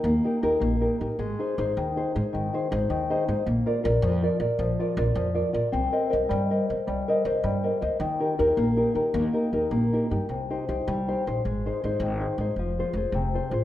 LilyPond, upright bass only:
\new Staff \with { instrumentName = "Upright bass" } { \clef bass \time 6/8 \key ees \major \tempo 4. = 106 ees,8 r8 ees,8 bes,,4 a,,16 r16 | aes,,8 r8 aes,,8 ees,4 aes,16 r16 | aes,,8 r8 aes,,8 ees,4 aes,16 r16 | bes,,8 r8 bes,,8 f,4 bes,16 r16 |
bes,,8 r8 bes,,8 f,4 bes,16 r16 | c,8 r8 c,8 g,4 c16 r16 | c,8 r8 c,8 g,4 d,16 r16 | ees,8 r8 ees,8 bes,,4 ees16 r16 |
ees,8 r8 ees,8 bes,,4 g,16 r16 | \key c \minor c,4 c,8 c,4 bes,,8 | aes,,4 aes,,8 aes,,4 aes,,8 | f,,4 f,,8 f,,4 a,,8 | }